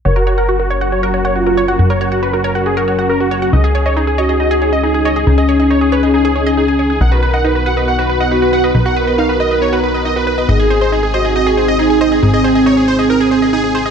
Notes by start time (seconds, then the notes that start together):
0.05 F#1 F#3 C#4 F#4 A#4 C#5
0.16 F#4 A#4
0.27 F#4 C#5
0.38 A#4 F#5
0.49 F#4
0.59 F#4 A#4
0.70 F#4 C#5
0.81 F#4 F#5
0.92 F#4 C#5
1.03 F#4 A#4
1.14 F#4 C#5
1.25 C#5 F#5
1.36 F4 F#4
1.47 F#4 A#4
1.57 C#5
1.68 F#4 F#5
1.79 F#1 F#4 A#4
1.90 A#4 C#5
2.01 F#4 C#5
2.12 F#4 F#5
2.22 F#4 B4
2.33 F#4 A#4
2.44 A#4 C#5
2.55 F#4 F#5
2.66 F#4 G#4
2.77 F#4 A#4
2.88 F#4 C#5
2.98 F#4 F#5
3.09 F#4 A#4
3.20 F#4 A#4
3.31 F#4 C#5
3.42 F#4 F#5
3.53 C#2 D#4 G#4 D#5
3.64 G#4
3.75 G#4 C#5
3.86 C#5 D#5
3.96 D#4 G#4
4.07 G#4
4.18 F#4 C#5 D#5
4.29 G#4 D#5
4.40 D#4 D#5
4.51 G#4
4.62 G#4 C#5
4.73 D#5
4.83 D#4 G#4
4.94 G#4
5.05 C#5 D#5
5.16 G#4 D#5
5.27 C#2 C#4 D#4 G#4
5.38 G#4 D#5
5.49 G#4 C#5
5.59 G#4 D#5
5.70 D#4 C#5
5.81 G#4
5.92 B4 C#5
6.03 G#4 D#5
6.14 D#4 G#4
6.25 G#4
6.35 G#4 C#5
6.46 G#4 D#5
6.57 D#4 G#4
6.68 G#4 G#5
6.79 G#4 C#5
6.90 G#4
7.01 B1 B3 D#4 F#4 A#4 F#5
7.12 F#4 B4
7.22 B4
7.33 D#5 F#5
7.44 D#4 B4
7.55 F#4 B4
7.66 F#4 B4 F#5
7.77 B4 D#5
7.88 D#4 F#5
7.99 F#4 B4
8.09 B4
8.20 D#5 F#5
8.31 D#4 F#4 B4
8.42 F#4 B4
8.53 B4 F#5
8.64 B4 D#5
8.75 B1 D#4 A#4 B4
8.85 F#4 F#5
8.96 B4
9.07 B4 D#5
9.18 D#4 F5
9.29 F#4 B4
9.40 B4 D#5
9.51 B4 D#5
9.62 D#4 C#5
9.73 F#4 B4
9.83 B4
9.94 B4 D#5
10.05 D#4 D#5
10.16 F#4 B4
10.27 B4
10.38 B4 D#5
10.49 G#1 C4 D#4 G#4 D#5
10.60 G#4
10.70 G#4 C5
10.81 C5 D#5
10.92 D#4 G#4
11.03 G#4
11.14 F#4 C5 D#5
11.25 G#4 D#5
11.36 D#4 D#5
11.46 G#4
11.57 G#4 C5
11.68 D#5
11.79 D#4 G#4
11.90 G#4
12.01 C5 D#5
12.12 G#4 D#5
12.23 G#1 C4 D#4 G#4
12.33 G#4 D#5
12.44 G#4 C5
12.55 G#4 D#5
12.66 D#4 C#5
12.77 G#4
12.88 C5
12.99 G#4 D#5
13.10 D#4 A#4
13.20 G#4
13.31 G#4 C5
13.42 G#4 D#5
13.53 D#4 G#4
13.64 G#4
13.75 G#4 C5
13.86 G#4 D#5